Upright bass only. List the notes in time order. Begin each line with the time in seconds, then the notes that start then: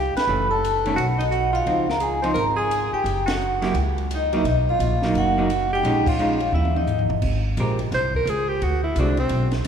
Already playing: C2
0.15 muted upright bass stroke
0.27 F#1
0.97 B1
1.66 C#2
2.35 G#1
2.92 muted upright bass stroke
3.04 F#1
3.74 C#2
4.44 B1
4.79 A#1
5.14 F#1
5.83 A#1
6.52 D#2
7.09 A1
7.22 G#1
7.57 A#1
7.91 C2
8.25 C#2
8.62 D2
8.96 C2
9.30 B1